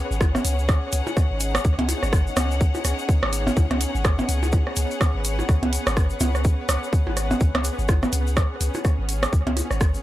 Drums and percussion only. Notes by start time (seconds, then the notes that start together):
0.12 shaker
0.21 kick, cross-stick, percussion blips, shaker
0.35 cross-stick, percussion blips, shaker
0.45 closed hi-hat, shaker
0.59 shaker
0.69 kick, cross-stick, percussion blips, shaker
0.92 closed hi-hat, shaker
1.07 percussion blips, shaker
1.17 kick, cross-stick, shaker
1.40 closed hi-hat, shaker
1.55 cross-stick, percussion blips, shaker
1.65 kick, shaker
1.79 closed hi-hat, percussion blips
1.89 closed hi-hat, percussion blips, shaker
2.03 cross-stick, shaker
2.13 kick, cross-stick, shaker
2.27 shaker
2.37 cross-stick, closed hi-hat, percussion blips, shaker
2.51 shaker
2.61 kick, shaker
2.75 percussion blips, shaker
2.85 cross-stick, closed hi-hat, shaker
2.99 shaker
3.09 kick, shaker
3.23 cross-stick, percussion blips
3.33 closed hi-hat, shaker
3.47 percussion blips, shaker
3.57 kick, percussion blips, shaker
3.71 cross-stick, closed hi-hat, percussion blips
3.81 closed hi-hat, shaker
3.95 shaker
4.05 kick, cross-stick, percussion blips, shaker
4.19 percussion blips, shaker
4.29 closed hi-hat, shaker
4.43 percussion blips, shaker
4.52 kick, percussion blips, shaker
4.67 cross-stick
4.76 closed hi-hat, shaker
4.91 shaker
5.01 kick, cross-stick, percussion blips, shaker
5.24 closed hi-hat, shaker
5.39 percussion blips, shaker
5.49 kick, cross-stick, shaker
5.63 closed hi-hat, percussion blips
5.73 closed hi-hat, shaker
5.87 cross-stick, percussion blips, shaker
5.97 kick, cross-stick, shaker
6.10 shaker
6.20 closed hi-hat, percussion blips, shaker
6.35 cross-stick, shaker
6.44 kick, shaker
6.69 cross-stick, closed hi-hat, percussion blips, shaker
6.84 shaker
6.93 kick, shaker
7.07 percussion blips
7.17 cross-stick, closed hi-hat, shaker
7.31 percussion blips, shaker
7.40 kick, shaker
7.55 cross-stick, closed hi-hat, percussion blips
7.64 closed hi-hat, shaker
7.79 shaker
7.89 kick, cross-stick, percussion blips, shaker
8.03 cross-stick, percussion blips, shaker
8.13 closed hi-hat, shaker
8.27 shaker
8.37 kick, cross-stick, percussion blips, shaker
8.61 closed hi-hat, shaker
8.74 percussion blips, shaker
8.85 kick, cross-stick, shaker
9.09 closed hi-hat, shaker
9.23 cross-stick, percussion blips, shaker
9.33 kick, shaker
9.47 closed hi-hat, percussion blips
9.57 closed hi-hat, percussion blips, shaker
9.71 cross-stick, shaker
9.81 kick, cross-stick, shaker
9.94 shaker